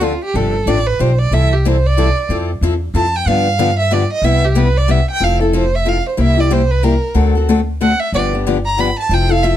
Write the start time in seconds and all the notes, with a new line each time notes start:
Already playing: D2
0.00 D3 F3 C4 D4 F4 A4
0.24 G4
0.34 G1 C3 F3 C4 D4 G4 A4
0.66 A1 C3 F3 C4 D4 G4 D5
0.87 B4
0.99 B1 C3 F3 C4 D4 G4 C5
1.19 D5
1.31 C2 C3 E3 G3 C4 E4 A4 E5
1.53 G4
1.65 C3 E3 G3 C4 E4 A4 C5
1.87 D5
1.97 C3 E3 G3 C4 E4 A4
2.29 F2 F3 C4 E4 A4
2.61 E2 F3 C4 E4 A4
2.94 F2 F3 C4 E4 A4 A5
3.16 G5
3.26 G2 D3 F3 B3 D4 G4 F5
3.59 D3 F3 B3 D4 G4
3.79 E5
3.91 D3 F3 B3 D4 G4 D5
4.13 D#5
4.22 C2 C3 G3 B3 E4 G4 E5
4.45 G4
4.55 C3 G3 B3 E4 G4 B4
4.78 D5
4.88 C3 G3 B3 E4 G4 E5
5.11 G5
5.20 F1 F3 C4 E4 A4 F5
5.41 C4 E4 A4
5.53 F3 C4 E4 A4 C5
5.76 E5
5.85 F3 C4 E4 A4 F5
6.09 C5
6.17 C2 C3 G3 A#3 E4 G4 E5
6.37 A#3 E4 G4 D5
6.50 C3 G3 A#3 E4 G4 C5
6.71 B4
6.83 C3 G3 A#3 E4 G4 A#4
7.14 D2 D3 A3 C4 F#4 A4
7.35 C4 F#4 A4
7.49 D3 A3 C4 F#4 A4
7.81 D3 A3 C4 F#4 A4 F#5
8.00 E5
8.12 G1 D3 F3 B3 D4 G4 D5
8.33 B3 D4 G4
8.47 D3 F3 B3 D4 G4
8.66 A#5
8.77 D3 F3 B3 D4 G4 B5
9.00 A5
9.09 F1 F3 C4 E4 A4
9.14 G5
9.29 C4 E4 A4 F5
9.43 F3 C4 E4 A4 E5